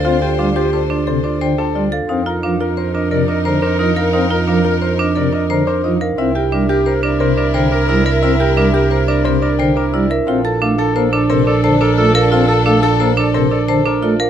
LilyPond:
<<
  \new Staff \with { instrumentName = "Grand piano" } { \time 6/4 \key bes \major \tempo 4 = 176 f''8 g''8 f''8 g'8 a'8 d''8 c''8 d''8 g''8 a'8 d''8 f''8 | f''8 bes''8 f''8 bes'8 c''8 ees''8 d''8 ees''8 bes''8 c''8 ees''8 f''8 | f''8 bes''8 f''8 bes'8 c''8 ees''8 d''8 ees''8 bes''8 c''8 ees''8 f''8 | e''8 g''8 e''8 g'8 bes'8 d''8 c''8 d''8 g''8 bes'8 d''8 e''8 |
e''8 g''8 e''8 g'8 bes'8 d''8 c''8 d''8 g''8 bes'8 d''8 e''8 | f''8 a''8 f''8 a'8 bes'8 d''8 c''8 d''8 a''8 bes'8 d''8 f''8 | f''8 a''8 f''8 a'8 bes'8 d''8 c''8 d''8 a''8 bes'8 d''8 f''8 | }
  \new Staff \with { instrumentName = "Clarinet" } { \time 6/4 \key bes \major f'8 f'8 f'8 f'8 f'8 f'8 f'8 f'8 f'8 f'8 f'8 r8 | bes'8 bes'8 bes'8 bes'8 bes'8 bes'8 bes'8 bes'8 bes'8 bes'8 bes'8 bes'8 | bes'8 bes'8 bes'8 bes'8 bes'8 bes'8 bes'8 bes'8 bes'8 bes'8 bes'8 r8 | bes'8 bes'8 bes'8 bes'8 bes'8 bes'8 bes'8 bes'8 bes'8 bes'8 bes'8 bes'8 |
bes'8 bes'8 bes'8 bes'8 bes'8 bes'8 bes'8 bes'8 bes'8 bes'8 bes'8 r8 | a'8 a'8 a'8 a'8 a'8 a'8 a'8 a'8 a'8 a'8 a'8 a'8 | a'8 a'8 a'8 a'8 a'8 a'8 a'8 a'8 a'8 a'8 a'8 r8 | }
  \new Staff \with { instrumentName = "String section" } { \time 6/4 \key bes \major <d' c''>1~ <d' c''>4. r8 | <ees' bes'>1.~ | <ees' bes'>1~ <ees' bes'>4. r8 | <e' bes'>1.~ |
<e' bes'>1~ <e' bes'>4. r8 | <d' a'>1.~ | <d' a'>1~ <d' a'>4. r8 | }
  \new Staff \with { instrumentName = "Marimba" } { \time 6/4 \key bes \major f'8 g'8 d'8 g'8 c''8 d'8 a'8 d'8 c''8 d'8 f'8 a'8 | ees'8 f'8 d'8 f'8 c''8 d'8 bes'8 d'8 c''8 d'8 ees'8 bes'8 | ees'8 f'8 d'8 f'8 c''8 d'8 bes'8 d'8 c''8 d'8 ees'8 bes'8 | e'8 g'8 d'8 g'8 c''8 d'8 bes'8 d'8 c''8 d'8 e'8 bes'8 |
e'8 g'8 d'8 g'8 c''8 d'8 bes'8 d'8 c''8 d'8 e'8 bes'8 | f'8 a'8 d'8 a'8 c''8 d'8 bes'8 d'8 c''8 d'8 f'8 bes'8 | f'8 a'8 d'8 a'8 c''8 d'8 bes'8 d'8 c''8 d'8 f'8 bes'8 | }
  \new Staff \with { instrumentName = "Pipe organ" } { \clef bass \time 6/4 \key bes \major c'8 r8 g8 r4. c8 r8 d8 r8 g8 r8 | c'8 r8 f8 r4. c8 r8 d8 r8 f8 r8 | c'8 r8 f8 r4. c8 r8 d8 r8 f8 r8 | c'8 r8 g8 r4. c8 r8 d8 r8 g8 r8 |
c'8 r8 g8 r4. c8 r8 d8 r8 g8 r8 | c'8 r8 a8 r8 bes8 r8 c8 r8 d8 r8 a8 r8 | c'8 r8 a8 r8 bes8 r8 c8 r8 d8 r8 a8 r8 | }
  \new Staff \with { instrumentName = "Double bass" } { \clef bass \time 6/4 \key bes \major d,1. | f,1.~ | f,1. | c,1.~ |
c,1. | bes,,1.~ | bes,,1. | }
>>